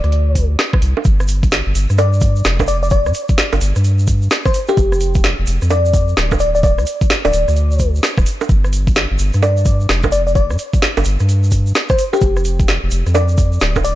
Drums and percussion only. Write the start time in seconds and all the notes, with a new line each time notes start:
0.04 cross-stick, closed hi-hat
0.12 closed hi-hat
0.35 kick, open hi-hat
0.59 snare, closed hi-hat
0.73 kick, cross-stick
0.82 open hi-hat
0.97 high bongo
1.05 kick, closed hi-hat, shaker
1.20 cross-stick, shaker
1.28 open hi-hat, shaker
1.43 kick, closed hi-hat, shaker
1.51 snare, closed hi-hat, shaker
1.75 open hi-hat, shaker
1.90 cross-stick, closed hi-hat, shaker
1.98 closed hi-hat, high bongo, shaker
2.13 shaker
2.21 kick, open hi-hat, shaker
2.36 shaker
2.44 snare, closed hi-hat, shaker
2.60 kick, cross-stick, high bongo, shaker
2.67 open hi-hat, shaker
2.83 shaker
2.90 kick, closed hi-hat, shaker
3.06 cross-stick, shaker
3.14 open hi-hat, shaker
3.29 kick, closed hi-hat, shaker
3.38 snare, closed hi-hat, shaker
3.53 open hi-hat, high bongo
3.61 open hi-hat, shaker
3.76 cross-stick, closed hi-hat, shaker
3.84 closed hi-hat, shaker
3.99 shaker
4.07 kick, open hi-hat, shaker
4.22 shaker
4.31 snare, closed hi-hat, shaker
4.46 kick, cross-stick, shaker
4.54 open hi-hat, shaker
4.68 high bongo, shaker
4.77 kick, closed hi-hat, shaker
4.92 cross-stick, shaker
5.01 open hi-hat, shaker
5.15 kick, closed hi-hat, shaker
5.24 snare, closed hi-hat, shaker
5.47 open hi-hat, shaker
5.62 cross-stick, closed hi-hat, shaker
5.70 closed hi-hat, high bongo, shaker
5.85 shaker
5.94 kick, open hi-hat, shaker
6.08 shaker
6.17 snare, closed hi-hat, shaker
6.31 kick, cross-stick, high bongo, shaker
6.39 open hi-hat, shaker
6.55 shaker
6.63 kick, closed hi-hat, shaker
6.78 cross-stick, shaker
6.86 open hi-hat, shaker
7.01 kick, closed hi-hat, shaker
7.10 snare, closed hi-hat, shaker
7.25 open hi-hat, high bongo
7.33 open hi-hat, shaker
7.48 cross-stick, closed hi-hat, shaker
7.56 closed hi-hat, shaker
7.71 shaker
7.79 kick, open hi-hat, shaker
7.95 shaker
8.03 snare, closed hi-hat, shaker
8.18 kick, cross-stick, shaker
8.26 open hi-hat, shaker
8.41 high bongo, shaker
8.49 kick, closed hi-hat, shaker
8.64 cross-stick, shaker
8.73 open hi-hat, shaker
8.87 kick, closed hi-hat, shaker
8.95 snare, closed hi-hat, shaker
9.19 open hi-hat, shaker
9.33 cross-stick, closed hi-hat, shaker
9.43 closed hi-hat, high bongo, shaker
9.57 shaker
9.65 kick, open hi-hat, shaker
9.80 shaker
9.89 snare, closed hi-hat, shaker
10.03 kick, cross-stick, high bongo, shaker
10.12 open hi-hat, shaker
10.27 shaker
10.35 kick, closed hi-hat, shaker
10.50 cross-stick, shaker
10.58 open hi-hat, shaker
10.73 kick, closed hi-hat, shaker
10.82 snare, closed hi-hat, shaker
10.97 open hi-hat, high bongo
11.04 open hi-hat, shaker
11.19 cross-stick, closed hi-hat, shaker
11.29 closed hi-hat, shaker
11.43 shaker
11.51 kick, open hi-hat, shaker
11.66 shaker
11.75 snare, closed hi-hat, shaker
11.89 kick, cross-stick, shaker
11.99 open hi-hat, shaker
12.13 high bongo, shaker
12.21 kick, closed hi-hat, shaker
12.37 cross-stick, shaker
12.45 open hi-hat, shaker
12.60 kick, closed hi-hat, shaker
12.68 snare, closed hi-hat, shaker
12.91 open hi-hat, shaker
13.06 cross-stick, closed hi-hat, shaker
13.15 closed hi-hat, high bongo, shaker
13.28 shaker
13.38 kick, open hi-hat, shaker
13.52 shaker
13.60 snare, closed hi-hat, shaker
13.76 kick, cross-stick, high bongo, shaker
13.85 open hi-hat, shaker